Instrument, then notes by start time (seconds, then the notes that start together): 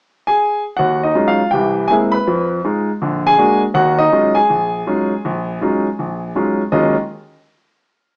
grand piano
0.27 G#4 G#5
0.77 D#2 F#4 F#5
1.03 D#4 D#5
1.15 F#3 G#3 C#4 D#4 F4
1.28 F4 F5
1.51 C2 E3 G4 G5
1.88 G#3 A#3 C4 E4 G#4 G#5
2.12 B4 B5
2.27 F2 F3
2.65 G#3 D#4 F4
3.02 A#1 D3
3.27 G#4 G#5
3.38 G#3 A#3 D4 F#4
3.74 D#2 D#3 F#4 F#5
3.98 D#4 D#5
4.12 F#3 G#3 C#4 D#4 F4
4.35 G#4 G#5
4.50 A#1
4.87 F#3 G#3 C#4 D#4 F4
5.25 A#1
5.61 F#3 G#3 C#4 D#4 F4
5.99 A#1
6.35 F#3 G#3 C#4 D#4 F4
6.72 D#2 D#3 F#3 G#3 C#4 F4 D#5